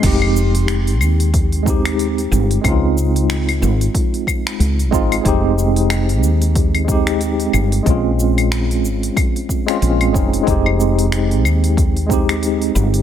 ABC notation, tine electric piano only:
X:1
M:4/4
L:1/16
Q:"Swing 16ths" 1/4=92
K:Fm
V:1 name="Tine electric piano"
[A,CEG]8- [A,CEG]2 [A,CEG]6 | [A,CEF]12- [A,CEF]2 [A,CEF]2 | [A,CEG]8- [A,CEG]2 [A,CEG]6 | [A,CDF]8- [A,CDF]3 [A,CDF]3 [A,CDE]2 |
[A,CEG]8- [A,CEG]2 [A,CEG]6 |]